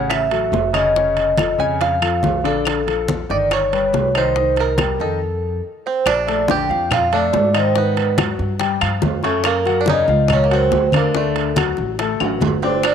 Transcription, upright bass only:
Already playing: A1
0.52 F1
1.58 F2
2.23 A#1
3.30 G1
3.93 C2
4.99 F2
6.06 A#1
6.69 F2
7.33 G#2
8.39 G2
8.82 G2
9.02 F#2
10.08 C#2
10.71 D2
11.78 A1
12.20 A1
12.40 G1

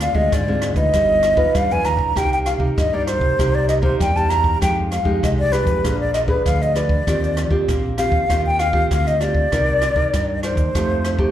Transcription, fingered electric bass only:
Already playing: D2
0.12 D2
0.32 G#2
0.73 D2
0.93 G1
1.55 G2
1.71 F2
1.85 D#2
1.96 C#2
2.16 C2
2.57 C2
2.78 G2
3.19 C2
3.39 C2
4.00 E2
4.62 F2
5.03 F2
5.23 C2
5.64 F2
5.84 A#1
6.46 D2
7.07 D#2
7.48 D#2
7.68 A#1
8.09 D#2
8.30 D#2
8.91 D2
9.52 C2
9.93 C2
10.14 G2
10.55 D#2
10.75 F2

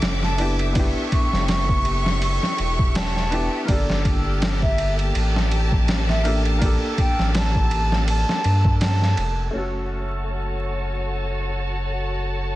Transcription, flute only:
0.24 A5
1.13 C#6
1.49 C#6
2.23 C#6
2.96 A5
3.69 D5
4.62 E5
6.09 E5
7.00 G5
7.36 A5
8.09 A5
8.81 A5

